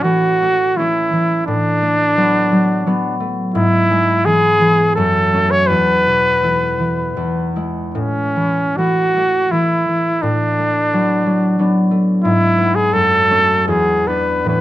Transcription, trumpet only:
0, 0, Header, 1, 2, 480
1, 0, Start_track
1, 0, Key_signature, 3, "major"
1, 0, Tempo, 744417
1, 503, Tempo, 692042
1, 976, Time_signature, 3, 2, 24, 8
1, 2423, Tempo, 710900
1, 3863, Tempo, 741656
1, 4823, Tempo, 801068
1, 5783, Tempo, 749064
1, 6263, Tempo, 703400
1, 7223, Tempo, 670391
1, 8663, Tempo, 745342
1, 9143, Tempo, 820793
1, 9686, End_track
2, 0, Start_track
2, 0, Title_t, "Trumpet"
2, 0, Program_c, 0, 56
2, 17, Note_on_c, 0, 66, 80
2, 498, Note_on_c, 0, 64, 60
2, 508, Note_off_c, 0, 66, 0
2, 973, Note_off_c, 0, 64, 0
2, 980, Note_on_c, 0, 62, 69
2, 2160, Note_off_c, 0, 62, 0
2, 2421, Note_on_c, 0, 64, 77
2, 2899, Note_on_c, 0, 68, 79
2, 2909, Note_off_c, 0, 64, 0
2, 3372, Note_off_c, 0, 68, 0
2, 3376, Note_on_c, 0, 69, 66
2, 3747, Note_on_c, 0, 73, 69
2, 3757, Note_off_c, 0, 69, 0
2, 3856, Note_on_c, 0, 71, 71
2, 3866, Note_off_c, 0, 73, 0
2, 5052, Note_off_c, 0, 71, 0
2, 5290, Note_on_c, 0, 61, 56
2, 5784, Note_on_c, 0, 66, 71
2, 5793, Note_off_c, 0, 61, 0
2, 6261, Note_on_c, 0, 64, 54
2, 6272, Note_off_c, 0, 66, 0
2, 6744, Note_on_c, 0, 62, 61
2, 6754, Note_off_c, 0, 64, 0
2, 7925, Note_off_c, 0, 62, 0
2, 8163, Note_on_c, 0, 64, 66
2, 8534, Note_on_c, 0, 68, 65
2, 8545, Note_off_c, 0, 64, 0
2, 8663, Note_on_c, 0, 69, 77
2, 8673, Note_off_c, 0, 68, 0
2, 9140, Note_off_c, 0, 69, 0
2, 9143, Note_on_c, 0, 68, 62
2, 9374, Note_on_c, 0, 71, 58
2, 9383, Note_off_c, 0, 68, 0
2, 9613, Note_off_c, 0, 71, 0
2, 9617, Note_on_c, 0, 71, 69
2, 9686, Note_off_c, 0, 71, 0
2, 9686, End_track
0, 0, End_of_file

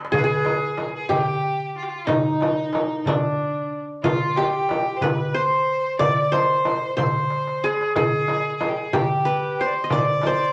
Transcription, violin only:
0, 0, Header, 1, 2, 480
1, 0, Start_track
1, 0, Tempo, 651466
1, 92, Time_signature, 6, 3, 24, 8
1, 7756, End_track
2, 0, Start_track
2, 0, Title_t, "Violin"
2, 0, Program_c, 0, 40
2, 90, Note_on_c, 0, 68, 79
2, 188, Note_off_c, 0, 68, 0
2, 194, Note_on_c, 0, 68, 77
2, 661, Note_off_c, 0, 68, 0
2, 706, Note_on_c, 0, 68, 72
2, 806, Note_off_c, 0, 68, 0
2, 811, Note_on_c, 0, 68, 77
2, 899, Note_off_c, 0, 68, 0
2, 899, Note_on_c, 0, 67, 77
2, 1262, Note_off_c, 0, 67, 0
2, 1304, Note_on_c, 0, 65, 70
2, 1347, Note_on_c, 0, 67, 56
2, 1358, Note_off_c, 0, 65, 0
2, 1387, Note_on_c, 0, 65, 70
2, 1398, Note_off_c, 0, 67, 0
2, 1520, Note_on_c, 0, 63, 82
2, 1531, Note_off_c, 0, 65, 0
2, 2240, Note_on_c, 0, 62, 73
2, 2251, Note_off_c, 0, 63, 0
2, 2787, Note_off_c, 0, 62, 0
2, 2970, Note_on_c, 0, 65, 82
2, 3209, Note_on_c, 0, 67, 82
2, 3220, Note_off_c, 0, 65, 0
2, 3267, Note_on_c, 0, 65, 67
2, 3278, Note_off_c, 0, 67, 0
2, 3309, Note_on_c, 0, 67, 81
2, 3320, Note_off_c, 0, 65, 0
2, 3657, Note_on_c, 0, 72, 60
2, 3668, Note_off_c, 0, 67, 0
2, 3699, Note_on_c, 0, 71, 82
2, 3710, Note_off_c, 0, 72, 0
2, 3940, Note_on_c, 0, 72, 94
2, 3951, Note_off_c, 0, 71, 0
2, 4413, Note_off_c, 0, 72, 0
2, 4418, Note_on_c, 0, 74, 85
2, 4658, Note_on_c, 0, 72, 86
2, 4669, Note_off_c, 0, 74, 0
2, 5133, Note_off_c, 0, 72, 0
2, 5137, Note_on_c, 0, 72, 81
2, 5623, Note_on_c, 0, 68, 76
2, 5634, Note_off_c, 0, 72, 0
2, 5856, Note_off_c, 0, 68, 0
2, 5861, Note_on_c, 0, 68, 81
2, 6308, Note_off_c, 0, 68, 0
2, 6315, Note_on_c, 0, 68, 73
2, 6400, Note_on_c, 0, 67, 59
2, 6411, Note_off_c, 0, 68, 0
2, 6450, Note_on_c, 0, 68, 69
2, 6461, Note_off_c, 0, 67, 0
2, 6591, Note_on_c, 0, 67, 74
2, 6602, Note_off_c, 0, 68, 0
2, 7065, Note_on_c, 0, 72, 71
2, 7076, Note_off_c, 0, 67, 0
2, 7114, Note_on_c, 0, 74, 58
2, 7125, Note_off_c, 0, 72, 0
2, 7171, Note_on_c, 0, 72, 77
2, 7182, Note_off_c, 0, 74, 0
2, 7290, Note_on_c, 0, 74, 82
2, 7301, Note_off_c, 0, 72, 0
2, 7349, Note_on_c, 0, 72, 68
2, 7360, Note_off_c, 0, 74, 0
2, 7398, Note_on_c, 0, 74, 88
2, 7409, Note_off_c, 0, 72, 0
2, 7756, Note_off_c, 0, 74, 0
2, 7756, End_track
0, 0, End_of_file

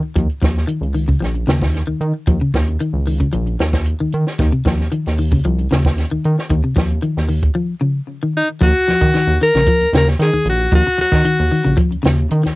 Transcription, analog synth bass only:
0, 0, Header, 1, 2, 480
1, 0, Start_track
1, 0, Tempo, 527241
1, 154, Time_signature, 4, 2, 24, 8
1, 11429, End_track
2, 0, Start_track
2, 0, Title_t, "Analog synth bass"
2, 0, Program_c, 0, 38
2, 141, Note_on_c, 0, 39, 97
2, 251, Note_off_c, 0, 39, 0
2, 386, Note_on_c, 0, 39, 80
2, 593, Note_off_c, 0, 39, 0
2, 738, Note_on_c, 0, 37, 68
2, 1049, Note_off_c, 0, 37, 0
2, 1107, Note_on_c, 0, 34, 87
2, 1314, Note_off_c, 0, 34, 0
2, 1347, Note_on_c, 0, 39, 86
2, 1659, Note_off_c, 0, 39, 0
2, 1714, Note_on_c, 0, 39, 38
2, 1774, Note_off_c, 0, 39, 0
2, 1827, Note_on_c, 0, 51, 99
2, 1936, Note_off_c, 0, 51, 0
2, 2068, Note_on_c, 0, 39, 97
2, 2177, Note_off_c, 0, 39, 0
2, 2317, Note_on_c, 0, 39, 87
2, 2521, Note_off_c, 0, 39, 0
2, 2670, Note_on_c, 0, 37, 79
2, 2977, Note_off_c, 0, 37, 0
2, 3041, Note_on_c, 0, 34, 90
2, 3244, Note_off_c, 0, 34, 0
2, 3279, Note_on_c, 0, 39, 91
2, 3587, Note_off_c, 0, 39, 0
2, 3651, Note_on_c, 0, 39, 39
2, 3708, Note_off_c, 0, 39, 0
2, 3768, Note_on_c, 0, 51, 93
2, 3870, Note_off_c, 0, 51, 0
2, 4003, Note_on_c, 0, 39, 104
2, 4107, Note_off_c, 0, 39, 0
2, 4237, Note_on_c, 0, 39, 84
2, 4442, Note_off_c, 0, 39, 0
2, 4615, Note_on_c, 0, 39, 82
2, 4913, Note_off_c, 0, 39, 0
2, 4965, Note_on_c, 0, 36, 92
2, 5167, Note_off_c, 0, 36, 0
2, 5207, Note_on_c, 0, 39, 87
2, 5513, Note_off_c, 0, 39, 0
2, 5570, Note_on_c, 0, 39, 36
2, 5628, Note_off_c, 0, 39, 0
2, 5692, Note_on_c, 0, 51, 103
2, 5793, Note_off_c, 0, 51, 0
2, 5914, Note_on_c, 0, 39, 102
2, 6023, Note_off_c, 0, 39, 0
2, 6157, Note_on_c, 0, 39, 87
2, 6363, Note_off_c, 0, 39, 0
2, 6530, Note_on_c, 0, 39, 80
2, 6830, Note_off_c, 0, 39, 0
2, 7846, Note_on_c, 0, 39, 107
2, 7949, Note_off_c, 0, 39, 0
2, 8091, Note_on_c, 0, 39, 38
2, 8151, Note_off_c, 0, 39, 0
2, 8203, Note_on_c, 0, 51, 84
2, 8303, Note_off_c, 0, 51, 0
2, 8441, Note_on_c, 0, 39, 90
2, 8541, Note_off_c, 0, 39, 0
2, 8691, Note_on_c, 0, 34, 91
2, 8787, Note_off_c, 0, 34, 0
2, 8930, Note_on_c, 0, 39, 41
2, 8987, Note_off_c, 0, 39, 0
2, 9038, Note_on_c, 0, 39, 94
2, 9242, Note_off_c, 0, 39, 0
2, 9279, Note_on_c, 0, 51, 104
2, 9384, Note_off_c, 0, 51, 0
2, 9406, Note_on_c, 0, 39, 39
2, 9464, Note_off_c, 0, 39, 0
2, 9515, Note_on_c, 0, 34, 98
2, 9720, Note_off_c, 0, 34, 0
2, 9762, Note_on_c, 0, 39, 112
2, 9865, Note_off_c, 0, 39, 0
2, 9995, Note_on_c, 0, 39, 35
2, 10058, Note_off_c, 0, 39, 0
2, 10121, Note_on_c, 0, 51, 94
2, 10220, Note_off_c, 0, 51, 0
2, 10373, Note_on_c, 0, 39, 80
2, 10467, Note_off_c, 0, 39, 0
2, 10613, Note_on_c, 0, 34, 81
2, 10706, Note_off_c, 0, 34, 0
2, 10850, Note_on_c, 0, 39, 39
2, 10906, Note_off_c, 0, 39, 0
2, 10970, Note_on_c, 0, 39, 86
2, 11166, Note_off_c, 0, 39, 0
2, 11211, Note_on_c, 0, 51, 96
2, 11309, Note_off_c, 0, 51, 0
2, 11339, Note_on_c, 0, 39, 43
2, 11392, Note_off_c, 0, 39, 0
2, 11429, End_track
0, 0, End_of_file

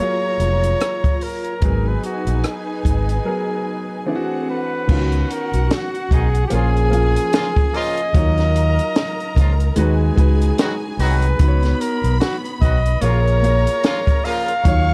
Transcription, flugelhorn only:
0, 0, Header, 1, 2, 480
1, 0, Start_track
1, 0, Tempo, 814111
1, 958, Time_signature, 4, 2, 24, 8
1, 8807, End_track
2, 0, Start_track
2, 0, Title_t, "Flugelhorn"
2, 0, Program_c, 0, 56
2, 0, Note_on_c, 0, 73, 119
2, 724, Note_on_c, 0, 70, 88
2, 733, Note_off_c, 0, 73, 0
2, 1105, Note_on_c, 0, 71, 85
2, 1114, Note_off_c, 0, 70, 0
2, 1202, Note_off_c, 0, 71, 0
2, 1209, Note_on_c, 0, 66, 80
2, 1455, Note_on_c, 0, 68, 72
2, 1464, Note_off_c, 0, 66, 0
2, 2649, Note_off_c, 0, 68, 0
2, 2653, Note_on_c, 0, 71, 84
2, 3137, Note_on_c, 0, 70, 87
2, 3146, Note_off_c, 0, 71, 0
2, 3382, Note_on_c, 0, 66, 79
2, 3391, Note_off_c, 0, 70, 0
2, 3620, Note_on_c, 0, 68, 88
2, 3629, Note_off_c, 0, 66, 0
2, 3809, Note_off_c, 0, 68, 0
2, 3812, Note_on_c, 0, 67, 63
2, 3853, Note_on_c, 0, 68, 105
2, 3862, Note_off_c, 0, 67, 0
2, 4577, Note_on_c, 0, 75, 111
2, 4585, Note_off_c, 0, 68, 0
2, 6008, Note_off_c, 0, 75, 0
2, 6481, Note_on_c, 0, 71, 96
2, 6959, Note_on_c, 0, 70, 92
2, 6968, Note_off_c, 0, 71, 0
2, 7191, Note_off_c, 0, 70, 0
2, 7195, Note_on_c, 0, 66, 88
2, 7289, Note_off_c, 0, 66, 0
2, 7438, Note_on_c, 0, 75, 100
2, 7673, Note_on_c, 0, 73, 115
2, 7682, Note_off_c, 0, 75, 0
2, 8400, Note_on_c, 0, 77, 115
2, 8408, Note_off_c, 0, 73, 0
2, 8807, Note_off_c, 0, 77, 0
2, 8807, End_track
0, 0, End_of_file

